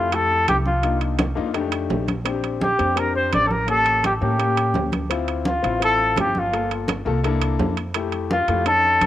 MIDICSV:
0, 0, Header, 1, 5, 480
1, 0, Start_track
1, 0, Key_signature, -1, "major"
1, 0, Tempo, 355872
1, 1128, Time_signature, 4, 2, 24, 8
1, 12226, End_track
2, 0, Start_track
2, 0, Title_t, "Trumpet"
2, 0, Program_c, 0, 56
2, 0, Note_on_c, 0, 65, 87
2, 193, Note_on_c, 0, 69, 104
2, 213, Note_off_c, 0, 65, 0
2, 648, Note_off_c, 0, 69, 0
2, 656, Note_on_c, 0, 67, 87
2, 762, Note_off_c, 0, 67, 0
2, 898, Note_on_c, 0, 65, 69
2, 1340, Note_off_c, 0, 65, 0
2, 3535, Note_on_c, 0, 67, 82
2, 4028, Note_on_c, 0, 70, 92
2, 4049, Note_off_c, 0, 67, 0
2, 4247, Note_off_c, 0, 70, 0
2, 4255, Note_on_c, 0, 72, 84
2, 4475, Note_off_c, 0, 72, 0
2, 4504, Note_on_c, 0, 74, 96
2, 4680, Note_on_c, 0, 69, 69
2, 4701, Note_off_c, 0, 74, 0
2, 4734, Note_on_c, 0, 70, 87
2, 4754, Note_off_c, 0, 69, 0
2, 4971, Note_off_c, 0, 70, 0
2, 4992, Note_on_c, 0, 69, 99
2, 5427, Note_off_c, 0, 69, 0
2, 5471, Note_on_c, 0, 67, 77
2, 5574, Note_off_c, 0, 67, 0
2, 5709, Note_on_c, 0, 67, 78
2, 6604, Note_off_c, 0, 67, 0
2, 7378, Note_on_c, 0, 65, 82
2, 7819, Note_off_c, 0, 65, 0
2, 7878, Note_on_c, 0, 69, 108
2, 8309, Note_off_c, 0, 69, 0
2, 8357, Note_on_c, 0, 67, 86
2, 8610, Note_on_c, 0, 65, 75
2, 8630, Note_off_c, 0, 67, 0
2, 9068, Note_off_c, 0, 65, 0
2, 11212, Note_on_c, 0, 65, 80
2, 11655, Note_off_c, 0, 65, 0
2, 11684, Note_on_c, 0, 69, 96
2, 12226, Note_off_c, 0, 69, 0
2, 12226, End_track
3, 0, Start_track
3, 0, Title_t, "Grand piano"
3, 0, Program_c, 1, 0
3, 147, Note_on_c, 1, 57, 72
3, 155, Note_on_c, 1, 64, 65
3, 165, Note_on_c, 1, 67, 80
3, 830, Note_off_c, 1, 57, 0
3, 834, Note_off_c, 1, 64, 0
3, 839, Note_off_c, 1, 67, 0
3, 1115, Note_on_c, 1, 58, 65
3, 1119, Note_on_c, 1, 62, 62
3, 1128, Note_on_c, 1, 63, 64
3, 1140, Note_on_c, 1, 65, 72
3, 1625, Note_off_c, 1, 58, 0
3, 1628, Note_off_c, 1, 62, 0
3, 1632, Note_off_c, 1, 63, 0
3, 1638, Note_off_c, 1, 65, 0
3, 1826, Note_on_c, 1, 58, 85
3, 1832, Note_on_c, 1, 62, 76
3, 1842, Note_on_c, 1, 63, 84
3, 1848, Note_on_c, 1, 65, 98
3, 2005, Note_off_c, 1, 58, 0
3, 2008, Note_off_c, 1, 62, 0
3, 2013, Note_off_c, 1, 63, 0
3, 2016, Note_off_c, 1, 65, 0
3, 2071, Note_on_c, 1, 57, 89
3, 2076, Note_on_c, 1, 62, 84
3, 2083, Note_on_c, 1, 63, 80
3, 2092, Note_on_c, 1, 67, 99
3, 2751, Note_off_c, 1, 57, 0
3, 2754, Note_off_c, 1, 62, 0
3, 2757, Note_off_c, 1, 63, 0
3, 2762, Note_off_c, 1, 67, 0
3, 3035, Note_on_c, 1, 60, 79
3, 3048, Note_on_c, 1, 62, 72
3, 3055, Note_on_c, 1, 67, 86
3, 3545, Note_off_c, 1, 60, 0
3, 3552, Note_off_c, 1, 62, 0
3, 3555, Note_off_c, 1, 67, 0
3, 3757, Note_on_c, 1, 60, 71
3, 3769, Note_on_c, 1, 62, 63
3, 3780, Note_on_c, 1, 67, 82
3, 3930, Note_off_c, 1, 60, 0
3, 3936, Note_off_c, 1, 62, 0
3, 3942, Note_off_c, 1, 67, 0
3, 3988, Note_on_c, 1, 60, 75
3, 4000, Note_on_c, 1, 62, 70
3, 4010, Note_on_c, 1, 67, 86
3, 4670, Note_off_c, 1, 60, 0
3, 4676, Note_off_c, 1, 62, 0
3, 4681, Note_off_c, 1, 67, 0
3, 4947, Note_on_c, 1, 58, 71
3, 4959, Note_on_c, 1, 61, 59
3, 4967, Note_on_c, 1, 67, 72
3, 5461, Note_off_c, 1, 58, 0
3, 5467, Note_off_c, 1, 61, 0
3, 5471, Note_off_c, 1, 67, 0
3, 5679, Note_on_c, 1, 58, 80
3, 5687, Note_on_c, 1, 61, 75
3, 5696, Note_on_c, 1, 67, 85
3, 5851, Note_off_c, 1, 58, 0
3, 5855, Note_off_c, 1, 61, 0
3, 5859, Note_off_c, 1, 67, 0
3, 5910, Note_on_c, 1, 58, 70
3, 5920, Note_on_c, 1, 61, 66
3, 5928, Note_on_c, 1, 67, 85
3, 6590, Note_off_c, 1, 58, 0
3, 6595, Note_off_c, 1, 61, 0
3, 6599, Note_off_c, 1, 67, 0
3, 6874, Note_on_c, 1, 60, 80
3, 6887, Note_on_c, 1, 64, 73
3, 6897, Note_on_c, 1, 65, 87
3, 7384, Note_off_c, 1, 60, 0
3, 7391, Note_off_c, 1, 64, 0
3, 7396, Note_off_c, 1, 65, 0
3, 7584, Note_on_c, 1, 60, 73
3, 7594, Note_on_c, 1, 64, 69
3, 7603, Note_on_c, 1, 65, 83
3, 7763, Note_off_c, 1, 60, 0
3, 7768, Note_off_c, 1, 64, 0
3, 7773, Note_off_c, 1, 65, 0
3, 7821, Note_on_c, 1, 60, 80
3, 7834, Note_on_c, 1, 64, 72
3, 7842, Note_on_c, 1, 65, 88
3, 8505, Note_off_c, 1, 60, 0
3, 8512, Note_off_c, 1, 64, 0
3, 8516, Note_off_c, 1, 65, 0
3, 8793, Note_on_c, 1, 58, 63
3, 8800, Note_on_c, 1, 65, 64
3, 8812, Note_on_c, 1, 69, 79
3, 9303, Note_off_c, 1, 58, 0
3, 9307, Note_off_c, 1, 65, 0
3, 9313, Note_off_c, 1, 69, 0
3, 9509, Note_on_c, 1, 58, 83
3, 9521, Note_on_c, 1, 65, 79
3, 9533, Note_on_c, 1, 69, 104
3, 9685, Note_off_c, 1, 58, 0
3, 9691, Note_off_c, 1, 65, 0
3, 9698, Note_off_c, 1, 69, 0
3, 9756, Note_on_c, 1, 58, 99
3, 9767, Note_on_c, 1, 62, 89
3, 9773, Note_on_c, 1, 64, 87
3, 9774, Note_on_c, 1, 69, 99
3, 10433, Note_off_c, 1, 58, 0
3, 10438, Note_off_c, 1, 62, 0
3, 10441, Note_off_c, 1, 64, 0
3, 10442, Note_off_c, 1, 69, 0
3, 10721, Note_on_c, 1, 57, 83
3, 10733, Note_on_c, 1, 64, 77
3, 10740, Note_on_c, 1, 67, 90
3, 11227, Note_off_c, 1, 57, 0
3, 11233, Note_off_c, 1, 64, 0
3, 11237, Note_off_c, 1, 67, 0
3, 11446, Note_on_c, 1, 57, 84
3, 11456, Note_on_c, 1, 64, 73
3, 11461, Note_on_c, 1, 67, 84
3, 11614, Note_off_c, 1, 57, 0
3, 11619, Note_off_c, 1, 64, 0
3, 11621, Note_off_c, 1, 67, 0
3, 11673, Note_on_c, 1, 61, 79
3, 11684, Note_on_c, 1, 63, 70
3, 11690, Note_on_c, 1, 69, 87
3, 12226, Note_off_c, 1, 61, 0
3, 12226, Note_off_c, 1, 63, 0
3, 12226, Note_off_c, 1, 69, 0
3, 12226, End_track
4, 0, Start_track
4, 0, Title_t, "Upright bass"
4, 0, Program_c, 2, 32
4, 0, Note_on_c, 2, 41, 97
4, 600, Note_off_c, 2, 41, 0
4, 651, Note_on_c, 2, 36, 88
4, 1772, Note_off_c, 2, 36, 0
4, 1847, Note_on_c, 2, 41, 93
4, 2517, Note_off_c, 2, 41, 0
4, 2562, Note_on_c, 2, 34, 90
4, 3687, Note_off_c, 2, 34, 0
4, 3767, Note_on_c, 2, 41, 93
4, 4437, Note_off_c, 2, 41, 0
4, 4492, Note_on_c, 2, 33, 97
4, 5611, Note_off_c, 2, 33, 0
4, 5686, Note_on_c, 2, 45, 94
4, 6356, Note_off_c, 2, 45, 0
4, 6389, Note_on_c, 2, 38, 90
4, 7520, Note_off_c, 2, 38, 0
4, 7598, Note_on_c, 2, 33, 94
4, 8271, Note_off_c, 2, 33, 0
4, 8322, Note_on_c, 2, 31, 90
4, 9446, Note_off_c, 2, 31, 0
4, 9517, Note_on_c, 2, 36, 94
4, 10191, Note_off_c, 2, 36, 0
4, 10238, Note_on_c, 2, 41, 94
4, 11364, Note_off_c, 2, 41, 0
4, 11435, Note_on_c, 2, 41, 97
4, 12109, Note_off_c, 2, 41, 0
4, 12156, Note_on_c, 2, 34, 96
4, 12226, Note_off_c, 2, 34, 0
4, 12226, End_track
5, 0, Start_track
5, 0, Title_t, "Drums"
5, 167, Note_on_c, 9, 65, 89
5, 182, Note_on_c, 9, 63, 33
5, 301, Note_off_c, 9, 65, 0
5, 317, Note_off_c, 9, 63, 0
5, 417, Note_on_c, 9, 63, 37
5, 552, Note_off_c, 9, 63, 0
5, 649, Note_on_c, 9, 65, 93
5, 653, Note_on_c, 9, 63, 84
5, 783, Note_off_c, 9, 65, 0
5, 788, Note_off_c, 9, 63, 0
5, 885, Note_on_c, 9, 63, 73
5, 1020, Note_off_c, 9, 63, 0
5, 1125, Note_on_c, 9, 65, 67
5, 1126, Note_on_c, 9, 63, 35
5, 1260, Note_off_c, 9, 65, 0
5, 1261, Note_off_c, 9, 63, 0
5, 1365, Note_on_c, 9, 65, 61
5, 1373, Note_on_c, 9, 63, 32
5, 1500, Note_off_c, 9, 65, 0
5, 1508, Note_off_c, 9, 63, 0
5, 1601, Note_on_c, 9, 65, 87
5, 1606, Note_on_c, 9, 63, 94
5, 1736, Note_off_c, 9, 65, 0
5, 1741, Note_off_c, 9, 63, 0
5, 1853, Note_on_c, 9, 63, 32
5, 1988, Note_off_c, 9, 63, 0
5, 2082, Note_on_c, 9, 65, 65
5, 2090, Note_on_c, 9, 63, 33
5, 2217, Note_off_c, 9, 65, 0
5, 2225, Note_off_c, 9, 63, 0
5, 2319, Note_on_c, 9, 65, 88
5, 2333, Note_on_c, 9, 63, 33
5, 2454, Note_off_c, 9, 65, 0
5, 2468, Note_off_c, 9, 63, 0
5, 2563, Note_on_c, 9, 63, 76
5, 2569, Note_on_c, 9, 66, 70
5, 2698, Note_off_c, 9, 63, 0
5, 2704, Note_off_c, 9, 66, 0
5, 2803, Note_on_c, 9, 63, 78
5, 2811, Note_on_c, 9, 65, 66
5, 2938, Note_off_c, 9, 63, 0
5, 2946, Note_off_c, 9, 65, 0
5, 3041, Note_on_c, 9, 63, 35
5, 3043, Note_on_c, 9, 65, 92
5, 3176, Note_off_c, 9, 63, 0
5, 3178, Note_off_c, 9, 65, 0
5, 3282, Note_on_c, 9, 63, 33
5, 3288, Note_on_c, 9, 65, 61
5, 3417, Note_off_c, 9, 63, 0
5, 3423, Note_off_c, 9, 65, 0
5, 3526, Note_on_c, 9, 63, 96
5, 3661, Note_off_c, 9, 63, 0
5, 3767, Note_on_c, 9, 65, 55
5, 3773, Note_on_c, 9, 63, 33
5, 3901, Note_off_c, 9, 65, 0
5, 3908, Note_off_c, 9, 63, 0
5, 4006, Note_on_c, 9, 65, 89
5, 4009, Note_on_c, 9, 63, 34
5, 4141, Note_off_c, 9, 65, 0
5, 4144, Note_off_c, 9, 63, 0
5, 4255, Note_on_c, 9, 63, 38
5, 4390, Note_off_c, 9, 63, 0
5, 4487, Note_on_c, 9, 65, 88
5, 4493, Note_on_c, 9, 63, 78
5, 4621, Note_off_c, 9, 65, 0
5, 4628, Note_off_c, 9, 63, 0
5, 4730, Note_on_c, 9, 63, 75
5, 4865, Note_off_c, 9, 63, 0
5, 4964, Note_on_c, 9, 65, 68
5, 4977, Note_on_c, 9, 63, 35
5, 5099, Note_off_c, 9, 65, 0
5, 5112, Note_off_c, 9, 63, 0
5, 5204, Note_on_c, 9, 65, 68
5, 5214, Note_on_c, 9, 63, 32
5, 5338, Note_off_c, 9, 65, 0
5, 5349, Note_off_c, 9, 63, 0
5, 5450, Note_on_c, 9, 63, 86
5, 5450, Note_on_c, 9, 65, 81
5, 5585, Note_off_c, 9, 63, 0
5, 5585, Note_off_c, 9, 65, 0
5, 5684, Note_on_c, 9, 63, 34
5, 5819, Note_off_c, 9, 63, 0
5, 5921, Note_on_c, 9, 63, 33
5, 5927, Note_on_c, 9, 65, 68
5, 6056, Note_off_c, 9, 63, 0
5, 6062, Note_off_c, 9, 65, 0
5, 6164, Note_on_c, 9, 63, 34
5, 6167, Note_on_c, 9, 65, 81
5, 6298, Note_off_c, 9, 63, 0
5, 6302, Note_off_c, 9, 65, 0
5, 6395, Note_on_c, 9, 63, 80
5, 6410, Note_on_c, 9, 66, 70
5, 6530, Note_off_c, 9, 63, 0
5, 6545, Note_off_c, 9, 66, 0
5, 6638, Note_on_c, 9, 63, 76
5, 6647, Note_on_c, 9, 65, 63
5, 6772, Note_off_c, 9, 63, 0
5, 6782, Note_off_c, 9, 65, 0
5, 6886, Note_on_c, 9, 65, 90
5, 7021, Note_off_c, 9, 65, 0
5, 7114, Note_on_c, 9, 63, 31
5, 7120, Note_on_c, 9, 65, 65
5, 7249, Note_off_c, 9, 63, 0
5, 7255, Note_off_c, 9, 65, 0
5, 7354, Note_on_c, 9, 63, 90
5, 7489, Note_off_c, 9, 63, 0
5, 7599, Note_on_c, 9, 63, 32
5, 7606, Note_on_c, 9, 65, 62
5, 7733, Note_off_c, 9, 63, 0
5, 7741, Note_off_c, 9, 65, 0
5, 7837, Note_on_c, 9, 63, 33
5, 7851, Note_on_c, 9, 65, 86
5, 7972, Note_off_c, 9, 63, 0
5, 7986, Note_off_c, 9, 65, 0
5, 8069, Note_on_c, 9, 63, 34
5, 8204, Note_off_c, 9, 63, 0
5, 8312, Note_on_c, 9, 63, 87
5, 8326, Note_on_c, 9, 65, 94
5, 8326, Note_on_c, 9, 66, 71
5, 8447, Note_off_c, 9, 63, 0
5, 8461, Note_off_c, 9, 65, 0
5, 8461, Note_off_c, 9, 66, 0
5, 8562, Note_on_c, 9, 63, 76
5, 8697, Note_off_c, 9, 63, 0
5, 8811, Note_on_c, 9, 63, 32
5, 8812, Note_on_c, 9, 65, 67
5, 8946, Note_off_c, 9, 63, 0
5, 8947, Note_off_c, 9, 65, 0
5, 9049, Note_on_c, 9, 63, 30
5, 9052, Note_on_c, 9, 65, 64
5, 9183, Note_off_c, 9, 63, 0
5, 9187, Note_off_c, 9, 65, 0
5, 9277, Note_on_c, 9, 63, 93
5, 9290, Note_on_c, 9, 65, 89
5, 9412, Note_off_c, 9, 63, 0
5, 9425, Note_off_c, 9, 65, 0
5, 9528, Note_on_c, 9, 63, 32
5, 9663, Note_off_c, 9, 63, 0
5, 9768, Note_on_c, 9, 65, 66
5, 9772, Note_on_c, 9, 63, 37
5, 9903, Note_off_c, 9, 65, 0
5, 9907, Note_off_c, 9, 63, 0
5, 10000, Note_on_c, 9, 65, 89
5, 10016, Note_on_c, 9, 63, 38
5, 10135, Note_off_c, 9, 65, 0
5, 10150, Note_off_c, 9, 63, 0
5, 10243, Note_on_c, 9, 66, 69
5, 10245, Note_on_c, 9, 63, 91
5, 10378, Note_off_c, 9, 66, 0
5, 10380, Note_off_c, 9, 63, 0
5, 10483, Note_on_c, 9, 65, 67
5, 10617, Note_off_c, 9, 65, 0
5, 10715, Note_on_c, 9, 65, 102
5, 10729, Note_on_c, 9, 63, 36
5, 10849, Note_off_c, 9, 65, 0
5, 10864, Note_off_c, 9, 63, 0
5, 10956, Note_on_c, 9, 65, 61
5, 10967, Note_on_c, 9, 63, 33
5, 11091, Note_off_c, 9, 65, 0
5, 11101, Note_off_c, 9, 63, 0
5, 11203, Note_on_c, 9, 63, 89
5, 11338, Note_off_c, 9, 63, 0
5, 11438, Note_on_c, 9, 63, 33
5, 11439, Note_on_c, 9, 65, 59
5, 11573, Note_off_c, 9, 63, 0
5, 11574, Note_off_c, 9, 65, 0
5, 11677, Note_on_c, 9, 63, 34
5, 11678, Note_on_c, 9, 65, 86
5, 11812, Note_off_c, 9, 63, 0
5, 11813, Note_off_c, 9, 65, 0
5, 11921, Note_on_c, 9, 63, 38
5, 12055, Note_off_c, 9, 63, 0
5, 12157, Note_on_c, 9, 63, 87
5, 12158, Note_on_c, 9, 65, 84
5, 12226, Note_off_c, 9, 63, 0
5, 12226, Note_off_c, 9, 65, 0
5, 12226, End_track
0, 0, End_of_file